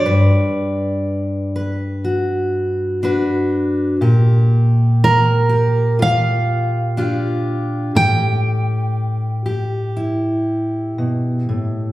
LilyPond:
<<
  \new Staff \with { instrumentName = "Steel-string acoustic guitar" } { \time 4/4 \key a \dorian \tempo 4 = 61 d''4.~ d''16 r2 r16 | r4 bes'4 f''2 | g''2. r4 | }
  \new Staff \with { instrumentName = "Steel-string acoustic guitar" } { \time 4/4 \key a \dorian << { <g b'>4. b'8 fis'4 <d' fis' b'>4 | g'4. g'8 f'4 <d' f' g'>4 | g'4. g'8 e'2 | } \\ { g,1 | bes,1 | a,2. b,8 a,8 | } >> }
>>